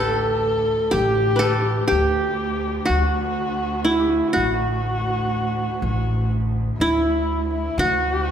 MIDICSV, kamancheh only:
0, 0, Header, 1, 2, 480
1, 0, Start_track
1, 0, Tempo, 978793
1, 1417, Time_signature, 10, 3, 24, 8
1, 4077, End_track
2, 0, Start_track
2, 0, Title_t, "Kamancheh"
2, 0, Program_c, 0, 110
2, 0, Note_on_c, 0, 69, 85
2, 458, Note_on_c, 0, 67, 85
2, 465, Note_off_c, 0, 69, 0
2, 930, Note_off_c, 0, 67, 0
2, 933, Note_on_c, 0, 67, 72
2, 1411, Note_on_c, 0, 66, 76
2, 1418, Note_off_c, 0, 67, 0
2, 1959, Note_on_c, 0, 67, 61
2, 1966, Note_off_c, 0, 66, 0
2, 2009, Note_on_c, 0, 66, 57
2, 2016, Note_off_c, 0, 67, 0
2, 2054, Note_on_c, 0, 64, 62
2, 2061, Note_off_c, 0, 66, 0
2, 2098, Note_on_c, 0, 66, 59
2, 2106, Note_off_c, 0, 64, 0
2, 2138, Note_off_c, 0, 66, 0
2, 2141, Note_on_c, 0, 66, 78
2, 2840, Note_off_c, 0, 66, 0
2, 2862, Note_on_c, 0, 66, 67
2, 3083, Note_off_c, 0, 66, 0
2, 3336, Note_on_c, 0, 64, 70
2, 3678, Note_off_c, 0, 64, 0
2, 3698, Note_on_c, 0, 64, 70
2, 3814, Note_on_c, 0, 66, 77
2, 3821, Note_off_c, 0, 64, 0
2, 4077, Note_off_c, 0, 66, 0
2, 4077, End_track
0, 0, End_of_file